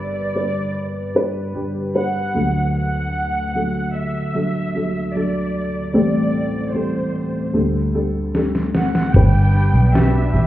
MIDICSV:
0, 0, Header, 1, 7, 480
1, 0, Start_track
1, 0, Key_signature, 1, "major"
1, 0, Tempo, 800000
1, 1648, Time_signature, 4, 2, 24, 8
1, 6281, End_track
2, 0, Start_track
2, 0, Title_t, "Violin section"
2, 0, Program_c, 0, 48
2, 0, Note_on_c, 0, 74, 90
2, 666, Note_off_c, 0, 74, 0
2, 1176, Note_on_c, 0, 78, 96
2, 1628, Note_off_c, 0, 78, 0
2, 1653, Note_on_c, 0, 78, 96
2, 2346, Note_off_c, 0, 78, 0
2, 2371, Note_on_c, 0, 76, 85
2, 3089, Note_off_c, 0, 76, 0
2, 3090, Note_on_c, 0, 74, 72
2, 3557, Note_off_c, 0, 74, 0
2, 3564, Note_on_c, 0, 74, 80
2, 4022, Note_off_c, 0, 74, 0
2, 4044, Note_on_c, 0, 72, 65
2, 4526, Note_off_c, 0, 72, 0
2, 5252, Note_on_c, 0, 78, 83
2, 5473, Note_off_c, 0, 78, 0
2, 5490, Note_on_c, 0, 79, 99
2, 5968, Note_on_c, 0, 76, 85
2, 5969, Note_off_c, 0, 79, 0
2, 6281, Note_off_c, 0, 76, 0
2, 6281, End_track
3, 0, Start_track
3, 0, Title_t, "Steel-string acoustic guitar"
3, 0, Program_c, 1, 25
3, 5482, Note_on_c, 1, 55, 68
3, 5486, Note_on_c, 1, 62, 66
3, 5489, Note_on_c, 1, 67, 66
3, 5492, Note_on_c, 1, 71, 66
3, 5714, Note_off_c, 1, 55, 0
3, 5721, Note_off_c, 1, 62, 0
3, 5721, Note_on_c, 1, 55, 52
3, 5726, Note_off_c, 1, 67, 0
3, 5728, Note_on_c, 1, 62, 53
3, 5730, Note_off_c, 1, 71, 0
3, 5734, Note_on_c, 1, 67, 58
3, 5739, Note_on_c, 1, 71, 54
3, 5955, Note_off_c, 1, 55, 0
3, 5960, Note_off_c, 1, 62, 0
3, 5962, Note_on_c, 1, 55, 75
3, 5963, Note_off_c, 1, 67, 0
3, 5968, Note_off_c, 1, 71, 0
3, 5968, Note_on_c, 1, 62, 77
3, 5970, Note_on_c, 1, 67, 78
3, 5975, Note_on_c, 1, 71, 84
3, 6191, Note_off_c, 1, 55, 0
3, 6198, Note_on_c, 1, 55, 50
3, 6200, Note_off_c, 1, 62, 0
3, 6204, Note_off_c, 1, 67, 0
3, 6207, Note_on_c, 1, 62, 48
3, 6209, Note_off_c, 1, 71, 0
3, 6211, Note_on_c, 1, 67, 55
3, 6216, Note_on_c, 1, 71, 52
3, 6281, Note_off_c, 1, 55, 0
3, 6281, Note_off_c, 1, 62, 0
3, 6281, Note_off_c, 1, 67, 0
3, 6281, Note_off_c, 1, 71, 0
3, 6281, End_track
4, 0, Start_track
4, 0, Title_t, "Felt piano"
4, 0, Program_c, 2, 0
4, 0, Control_c, 2, 64, 127
4, 0, Note_on_c, 2, 31, 49
4, 0, Note_on_c, 2, 43, 53
4, 0, Note_on_c, 2, 55, 73
4, 0, Note_on_c, 2, 62, 76
4, 0, Note_on_c, 2, 69, 65
4, 0, Note_on_c, 2, 71, 77
4, 183, Note_off_c, 2, 55, 0
4, 183, Note_off_c, 2, 62, 0
4, 185, Note_off_c, 2, 71, 0
4, 206, Note_on_c, 2, 55, 50
4, 210, Note_on_c, 2, 62, 41
4, 218, Note_on_c, 2, 71, 52
4, 663, Note_off_c, 2, 55, 0
4, 665, Note_off_c, 2, 62, 0
4, 669, Note_off_c, 2, 71, 0
4, 688, Note_on_c, 2, 55, 70
4, 692, Note_on_c, 2, 62, 56
4, 697, Note_on_c, 2, 71, 77
4, 914, Note_off_c, 2, 55, 0
4, 918, Note_off_c, 2, 62, 0
4, 920, Note_off_c, 2, 71, 0
4, 923, Note_on_c, 2, 55, 70
4, 928, Note_on_c, 2, 62, 62
4, 932, Note_on_c, 2, 67, 77
4, 1153, Note_off_c, 2, 55, 0
4, 1156, Note_off_c, 2, 62, 0
4, 1158, Note_off_c, 2, 67, 0
4, 1165, Note_on_c, 2, 55, 61
4, 1169, Note_on_c, 2, 62, 49
4, 1173, Note_on_c, 2, 71, 70
4, 1384, Note_off_c, 2, 31, 0
4, 1385, Note_off_c, 2, 43, 0
4, 1399, Note_off_c, 2, 62, 0
4, 1405, Note_on_c, 2, 54, 59
4, 1406, Note_off_c, 2, 55, 0
4, 1407, Note_on_c, 2, 50, 45
4, 1408, Note_on_c, 2, 62, 53
4, 1409, Note_on_c, 2, 38, 49
4, 1410, Note_off_c, 2, 71, 0
4, 1411, Note_off_c, 2, 69, 0
4, 1411, Note_on_c, 2, 69, 59
4, 1416, Control_c, 2, 64, 0
4, 1515, Control_c, 2, 64, 127
4, 2090, Note_off_c, 2, 54, 0
4, 2092, Note_off_c, 2, 62, 0
4, 2093, Note_off_c, 2, 69, 0
4, 2128, Note_on_c, 2, 54, 50
4, 2132, Note_on_c, 2, 62, 47
4, 2138, Note_on_c, 2, 69, 62
4, 2584, Note_off_c, 2, 54, 0
4, 2586, Note_off_c, 2, 62, 0
4, 2589, Note_off_c, 2, 69, 0
4, 2605, Note_on_c, 2, 54, 61
4, 2609, Note_on_c, 2, 62, 54
4, 2615, Note_on_c, 2, 69, 62
4, 2834, Note_off_c, 2, 54, 0
4, 2836, Note_off_c, 2, 62, 0
4, 2839, Note_off_c, 2, 69, 0
4, 2848, Note_on_c, 2, 54, 58
4, 2852, Note_on_c, 2, 62, 47
4, 2859, Note_on_c, 2, 69, 63
4, 3076, Note_off_c, 2, 54, 0
4, 3078, Note_off_c, 2, 62, 0
4, 3081, Note_off_c, 2, 69, 0
4, 3090, Note_on_c, 2, 54, 58
4, 3094, Note_on_c, 2, 62, 50
4, 3100, Note_on_c, 2, 69, 64
4, 3303, Note_off_c, 2, 50, 0
4, 3304, Note_off_c, 2, 38, 0
4, 3545, Note_off_c, 2, 54, 0
4, 3547, Note_off_c, 2, 62, 0
4, 3550, Note_off_c, 2, 69, 0
4, 3559, Note_on_c, 2, 55, 76
4, 3565, Note_on_c, 2, 45, 48
4, 3565, Note_on_c, 2, 60, 71
4, 3566, Note_on_c, 2, 33, 54
4, 3569, Note_on_c, 2, 69, 80
4, 3575, Control_c, 2, 64, 0
4, 3664, Control_c, 2, 64, 127
4, 4019, Note_off_c, 2, 55, 0
4, 4022, Note_off_c, 2, 60, 0
4, 4024, Note_off_c, 2, 69, 0
4, 4042, Note_on_c, 2, 55, 51
4, 4047, Note_on_c, 2, 60, 41
4, 4053, Note_on_c, 2, 69, 54
4, 4501, Note_off_c, 2, 55, 0
4, 4502, Note_off_c, 2, 45, 0
4, 4503, Note_off_c, 2, 33, 0
4, 4503, Note_off_c, 2, 60, 0
4, 4506, Note_off_c, 2, 69, 0
4, 4518, Note_on_c, 2, 55, 57
4, 4521, Note_on_c, 2, 50, 48
4, 4522, Note_on_c, 2, 38, 51
4, 4522, Note_on_c, 2, 62, 54
4, 4528, Note_on_c, 2, 69, 66
4, 4534, Control_c, 2, 64, 0
4, 4649, Control_c, 2, 64, 127
4, 4751, Note_off_c, 2, 55, 0
4, 4753, Note_off_c, 2, 62, 0
4, 4756, Note_off_c, 2, 69, 0
4, 4762, Note_on_c, 2, 55, 60
4, 4768, Note_on_c, 2, 62, 56
4, 4771, Note_on_c, 2, 69, 70
4, 4993, Note_off_c, 2, 55, 0
4, 4996, Note_off_c, 2, 62, 0
4, 4997, Note_off_c, 2, 69, 0
4, 5004, Note_on_c, 2, 55, 65
4, 5008, Note_on_c, 2, 62, 63
4, 5015, Note_on_c, 2, 69, 77
4, 5460, Note_off_c, 2, 50, 0
4, 5461, Note_off_c, 2, 38, 0
4, 5462, Note_off_c, 2, 55, 0
4, 5464, Note_off_c, 2, 62, 0
4, 5467, Note_off_c, 2, 69, 0
4, 5490, Note_on_c, 2, 55, 87
4, 5493, Note_on_c, 2, 62, 73
4, 5495, Control_c, 2, 64, 0
4, 5495, Note_on_c, 2, 43, 58
4, 5498, Note_on_c, 2, 71, 85
4, 5604, Control_c, 2, 64, 127
4, 5945, Note_off_c, 2, 55, 0
4, 5946, Note_off_c, 2, 62, 0
4, 5949, Note_off_c, 2, 71, 0
4, 5967, Note_on_c, 2, 55, 55
4, 5972, Note_on_c, 2, 62, 53
4, 5976, Note_on_c, 2, 66, 55
4, 6187, Note_off_c, 2, 43, 0
4, 6281, Note_off_c, 2, 55, 0
4, 6281, Note_off_c, 2, 62, 0
4, 6281, Note_off_c, 2, 66, 0
4, 6281, End_track
5, 0, Start_track
5, 0, Title_t, "String section"
5, 0, Program_c, 3, 48
5, 5487, Note_on_c, 3, 55, 64
5, 5487, Note_on_c, 3, 59, 56
5, 5488, Note_on_c, 3, 62, 65
5, 6281, Note_off_c, 3, 55, 0
5, 6281, Note_off_c, 3, 59, 0
5, 6281, Note_off_c, 3, 62, 0
5, 6281, End_track
6, 0, Start_track
6, 0, Title_t, "Fingered electric bass"
6, 0, Program_c, 4, 33
6, 5485, Note_on_c, 4, 31, 81
6, 5822, Note_off_c, 4, 31, 0
6, 5843, Note_on_c, 4, 35, 71
6, 6181, Note_off_c, 4, 35, 0
6, 6203, Note_on_c, 4, 33, 86
6, 6281, Note_off_c, 4, 33, 0
6, 6281, End_track
7, 0, Start_track
7, 0, Title_t, "Drums"
7, 5009, Note_on_c, 9, 38, 45
7, 5069, Note_off_c, 9, 38, 0
7, 5130, Note_on_c, 9, 38, 46
7, 5190, Note_off_c, 9, 38, 0
7, 5248, Note_on_c, 9, 38, 72
7, 5308, Note_off_c, 9, 38, 0
7, 5370, Note_on_c, 9, 38, 73
7, 5430, Note_off_c, 9, 38, 0
7, 5485, Note_on_c, 9, 49, 77
7, 5486, Note_on_c, 9, 36, 97
7, 5486, Note_on_c, 9, 42, 68
7, 5545, Note_off_c, 9, 49, 0
7, 5546, Note_off_c, 9, 36, 0
7, 5546, Note_off_c, 9, 42, 0
7, 5722, Note_on_c, 9, 42, 67
7, 5782, Note_off_c, 9, 42, 0
7, 5971, Note_on_c, 9, 42, 75
7, 5972, Note_on_c, 9, 38, 103
7, 6031, Note_off_c, 9, 42, 0
7, 6032, Note_off_c, 9, 38, 0
7, 6208, Note_on_c, 9, 42, 55
7, 6268, Note_off_c, 9, 42, 0
7, 6281, End_track
0, 0, End_of_file